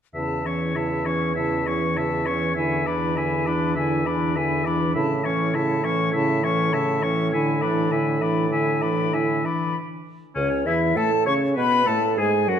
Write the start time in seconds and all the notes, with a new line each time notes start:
0.14 E2 C#3 E4 E5 A5
0.46 E3 C#4 C#5 C#6
0.75 C#3 E4 E5 A5
1.06 E3 C#4 C#5 C#6
1.36 C#3 E4 E5 A5
1.66 E3 C#4 C#5 C#6
1.96 C#3 E4 E5 A5
2.26 E3 C#4 C#5 C#6
2.56 D3 E4 E5 G#5
2.86 E3 D4 D5 B5
3.17 D3 E4 E5 G#5
3.46 E3 D4 D5 B5
3.76 D3 E4 E5 G#5
4.06 E3 D4 D5 B5
4.36 D3 E4 E5 G#5
4.65 E3 D4 D5 B5
4.95 A2 C#3 E4 E5 A5
5.24 E3 C#4 C#5 C#6
5.54 C#3 E4 E5 A5
5.84 E3 C#4 C#5 C#6
6.13 C#3 E4 E5 A5
6.44 E3 C#4 C#5 C#6
6.73 C#3 E4 E5 A5
7.03 E3 C#4 C#5 C#6
7.32 D3 E4 E5 G#5
7.62 E3 D4 D5 B5
7.91 D3 E4 E5 G#5
8.21 E3 D4 D5 B5
8.51 D3 E4 E5 G#5
8.82 E3 D4 D5 B5
9.13 D3 E4 E5 G#5
9.44 E3 D4 D5 B5
10.35 C#2 C#3 C#4 C#5
10.66 E2 E3 E4 E5
10.96 A2 A3 A4 A5
11.26 C#3 C#4 C#5 C#6
11.56 B2 B3 B4 B5
11.86 A2 A3 A4 A5
12.17 G#2 G#3 G#4 G#5
12.47 F#2 F#3 F#4 F#5